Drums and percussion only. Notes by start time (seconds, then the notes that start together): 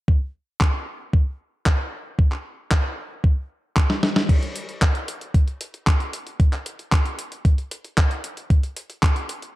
0.08 kick
0.61 kick, clap
1.13 kick
1.66 kick, clap
2.19 kick
2.32 clap
2.71 kick, clap
3.24 kick
3.77 kick, clap
3.90 snare
4.03 snare
4.16 snare
4.29 kick, closed hi-hat, crash
4.42 closed hi-hat
4.56 closed hi-hat
4.69 closed hi-hat
4.82 kick, clap, closed hi-hat
4.95 closed hi-hat
5.08 closed hi-hat
5.21 closed hi-hat
5.34 kick, closed hi-hat
5.48 closed hi-hat
5.61 closed hi-hat
5.74 closed hi-hat
5.87 kick, clap, closed hi-hat
6.00 closed hi-hat
6.13 closed hi-hat
6.27 closed hi-hat
6.40 kick, closed hi-hat
6.53 clap, closed hi-hat
6.66 closed hi-hat
6.79 closed hi-hat
6.92 kick, clap, closed hi-hat
7.05 closed hi-hat
7.19 closed hi-hat
7.32 closed hi-hat
7.45 kick, closed hi-hat
7.58 closed hi-hat
7.71 closed hi-hat
7.84 closed hi-hat
7.98 kick, clap, closed hi-hat
8.11 closed hi-hat
8.24 closed hi-hat
8.37 closed hi-hat
8.50 kick, closed hi-hat
8.63 closed hi-hat
8.76 closed hi-hat
8.90 closed hi-hat
9.03 kick, clap, closed hi-hat
9.16 closed hi-hat
9.29 closed hi-hat
9.42 closed hi-hat